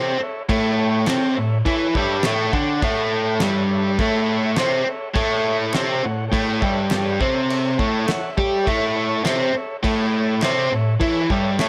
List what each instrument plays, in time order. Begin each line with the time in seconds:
Already playing: overdriven electric guitar C3 C4, transistor combo organ A4 C#5 G5
0.20 transistor combo organ A4 C#5 E5, muted overdriven electric guitar stroke
0.49 overdriven electric guitar A2 A3, transistor combo organ A4 C#5, kick, crash
0.53 transistor combo organ E5
0.79 transistor combo organ A4 C#5 G5
1.07 overdriven electric guitar C3 C4, transistor combo organ A4 C#5, snare, clap, crash
1.11 transistor combo organ G5
1.37 overdriven electric guitar A2, transistor combo organ A4 C#5 E5
1.65 overdriven electric guitar E3 E4, transistor combo organ A4 C#5 E5, kick, crash
1.93 overdriven electric guitar G2 G3, transistor combo organ A4 C#5 E5, kick
2.23 overdriven electric guitar A2 A3, transistor combo organ A4 C#5 G5, snare, clap, crash
2.52 overdriven electric guitar D3 D4, transistor combo organ A4 C#5 G5, kick
2.81 overdriven electric guitar A2 A3, transistor combo organ A4 C#5 F#5, kick, crash
3.13 transistor combo organ A4 C#5 G5
3.40 overdriven electric guitar G2 G3, transistor combo organ A4 C#5 E5, snare, clap, crash
3.70 transistor combo organ A4 C#5 E5
3.99 overdriven electric guitar A2 A3, transistor combo organ A4 C#5 E5, kick, crash
4.29 transistor combo organ A4 C#5 E5
4.57 overdriven electric guitar C3 C4, transistor combo organ A4 C#5 E5, snare, clap, crash
4.86 transistor combo organ A4 C#5 E5, muted overdriven electric guitar stroke
5.14 overdriven electric guitar A2 A3, transistor combo organ A4 C#5 E5, kick, crash
5.44 transistor combo organ A4 C#5 E5
5.72 overdriven electric guitar C3 C4, transistor combo organ A4 C#5 E5, snare, clap, crash
6.02 overdriven electric guitar A2, transistor combo organ A4 C#5 F#5
6.28 overdriven electric guitar A2, transistor combo organ A4 C#5 G5
6.33 overdriven electric guitar A3, kick, crash
6.57 transistor combo organ A4 C#5 E5
6.61 overdriven electric guitar G2 G3, kick
6.91 transistor combo organ A4 C#5 G5, snare, clap, crash
7.20 overdriven electric guitar C3 C4, transistor combo organ A4 C#5 E5, kick
7.48 transistor combo organ A4 C#5 E5, crash
7.78 overdriven electric guitar A2 A3, transistor combo organ A4 C#5 E5 A5, kick
8.08 transistor combo organ A4 C#5 E5 F#5, muted overdriven electric guitar stroke, snare, clap, crash
8.36 overdriven electric guitar G3 G4, transistor combo organ A4 C#5 E5, kick
8.63 overdriven electric guitar A2, transistor combo organ A4 C#5 E5, kick
8.68 overdriven electric guitar A3, crash
8.96 transistor combo organ A4 C#5 E5
9.24 overdriven electric guitar C3 C4, transistor combo organ A4 C#5 E5, snare, clap, crash
9.55 transistor combo organ A4 C#5 E5, muted overdriven electric guitar stroke
9.83 overdriven electric guitar A2 A3, transistor combo organ A4 C#5 E5, kick, crash
10.12 transistor combo organ A4 C#5 E5
10.42 overdriven electric guitar C3 C4, transistor combo organ A4 C#5 E5, snare, clap, crash
10.72 overdriven electric guitar A2, transistor combo organ A4 C#5
10.76 transistor combo organ E5
10.99 overdriven electric guitar E3 E4, transistor combo organ A4 C#5 E5, kick, crash
11.30 overdriven electric guitar G2 G3, transistor combo organ A4 C#5 E5, kick
11.59 overdriven electric guitar A2 A3, transistor combo organ A4 C#5 E5, snare, clap, crash